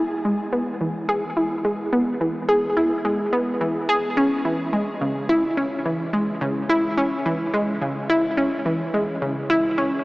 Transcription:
Already playing: E4
0.25 G#3
0.53 B3
0.81 E3
1.09 G#4
1.37 E4
1.65 G#3
1.93 B3
2.21 E3
2.48 G#4
2.77 E4
3.05 G#3
3.33 B3
3.61 E3
3.89 G#4
4.17 C#4
4.45 E3
4.73 G#3
5.01 C#3
5.29 E4
5.57 C#4
5.85 E3
6.13 G#3
6.41 C#3
6.69 E4
6.98 C#4
7.26 E3
7.54 G#3
7.82 C#3
8.10 E4
8.37 C#4
8.66 E3
8.94 G#3
9.22 C#3
9.50 E4
9.78 C#4

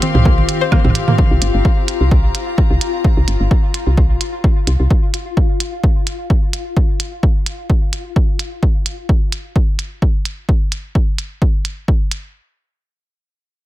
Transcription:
Already playing: C4 F4 G4 F5 C6
0.02 C4, closed hi-hat, high conga
0.15 C2, mid tom
0.25 A#3, kick
0.38 A#1, high conga
0.49 closed hi-hat
0.61 C5
0.72 A#3, kick, high conga, high woodblock
0.85 C2 C4, mid tom
0.95 closed hi-hat
1.08 A#3, mid tom, high conga
1.18 kick
1.31 C2
1.42 G1, closed hi-hat
1.54 G1 A#5
1.65 kick
1.88 closed hi-hat
2.01 C2
2.11 kick
2.24 A#1
2.35 closed hi-hat
2.58 kick
2.71 C2
2.81 closed hi-hat
3.04 kick
3.17 C2
3.28 G1, closed hi-hat
3.40 G1
3.51 kick
3.74 closed hi-hat
3.87 C2
3.98 kick
4.10 A#1
4.21 closed hi-hat
4.44 kick
4.67 C2, closed hi-hat
4.80 C2
4.91 kick
5.14 closed hi-hat
5.37 kick
5.60 closed hi-hat
5.84 kick
6.07 closed hi-hat
6.30 kick
6.53 closed hi-hat
6.77 kick
7.00 closed hi-hat
7.23 kick
7.46 closed hi-hat
7.70 kick
7.93 closed hi-hat
8.16 kick
8.39 closed hi-hat
8.63 kick
8.86 closed hi-hat
9.09 kick
9.32 closed hi-hat
9.56 kick
9.79 closed hi-hat
10.02 kick
10.25 closed hi-hat
10.49 kick
10.72 closed hi-hat
10.95 kick
11.18 closed hi-hat
11.42 kick
11.65 closed hi-hat
11.88 kick
12.11 closed hi-hat

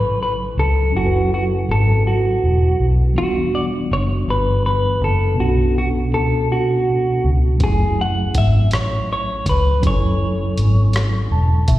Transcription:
Already playing: A1 C#3 F#3 E4 A4 B4 G#5
0.23 B4
0.57 C#2 A4
0.90 F#3 C#4
0.94 F#1 E4 F#4 G#5
1.00 A4
1.06 B4
1.34 F#4
1.69 G#1 A4
2.07 F#4
2.43 E1
2.80 B1
3.13 E3 B3
3.17 E1 D4 F#4
3.22 G3
3.55 D5
3.91 F#1 C#5
4.28 G1 B4
4.66 B4
5.01 F#1 A4
5.34 B2 B3
5.39 B1 C#4 D4 F#4
5.44 A4
5.78 F#4
6.13 C#2 A4
6.52 F#4
6.87 A1
7.24 C#2
7.57 F#1 F#3 C#4, kick, closed hi-hat
7.62 E4 G#4
7.67 A3
8.01 F#5
8.35 G#1 E5, kick, closed hi-hat
8.71 A1 C#5, cross-stick, closed hi-hat
9.13 C#5
9.46 C#2 B4, kick, closed hi-hat
9.80 F#1 F#3 C#4, kick, closed hi-hat
9.85 E4 C#5 G#5
9.90 A4
10.57 G#1, closed hi-hat
10.93 cross-stick, closed hi-hat
11.31 E1 A5
11.68 B1 E5, kick, closed hi-hat

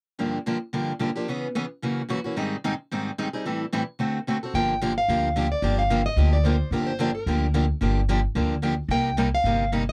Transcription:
0.19 G2 D3 F3 A#3 D4 G4
0.46 G2 D3 F3 A#3 D4 G4
0.73 G2 D3 F3 A#3 D4 G4
0.99 G2 D3 F3 A#3 D4 G4
1.16 F3 A#3 D4 G4
1.28 C#3 E3 B3 C#4 G#4
1.55 C#3 E3 B3 C#4 G#4
1.82 F#2 C#3 E3 A#3 C#4 F#4
2.09 F#2 C#3 E3 A#3 C#4 F#4
2.24 E3 A#3 C#4 F#4
2.36 G#2 D#3 G3 C4 D#4 G#4
2.64 G#2 D#3 G3 C4 D#4 G#4
2.92 G#2 D#3 G3 C4 D#4 G#4
3.18 G#2 D#3 G3 C4 D#4 G#4
3.33 G3 C4 D#4 G#4
3.45 A2 E3 G3 C4 E4 A4
3.72 A2 E3 G3 C4 E4 A4
3.99 D3 A3 C4 F#4 A4
4.27 D3 A3 C4 F#4 A4
4.43 C4 F#4 A4
4.54 G1 D3 F3 A#3 D4 G4 G5
4.82 D3 F3 A#3 D4 G4
4.98 F5
5.08 D2 D3 F3 A#3 D4 G4
5.36 D3 F3 A#3 D4 G4
5.52 D5
5.62 G1 D3 F3 A#3 D4 G4
5.79 F5
5.90 D3 F3 A#3 D4 G4
6.06 D#5
6.16 D2 D3 F3 A#3 D4 G4
6.33 D5
6.44 D3 F3 A#3 D4 G4 C5
6.71 G1 D3 F3 A#3 D4 G4 A#4
6.87 C5
6.99 D3 F3 A#3 D4 G4
7.15 A#4
7.26 D2 D3 F3 A#3 D4 G4
7.54 D3 F3 A#3 D4 G4
7.81 G1 D3 F3 A#3 D4 G4
8.09 D3 F3 A#3 D4 G4
8.35 D2 D3 F3 A#3 D4 G4
8.62 D3 F3 A#3 D4 G4
8.88 C2 C3 G3 A#3 D#4 G4 G5
9.17 C3 G3 A#3 D#4 G4
9.35 F5
9.44 G1 C3 G3 A#3 D#4 G4
9.72 C3 G3 A#3 D#4 G4
9.89 D#5

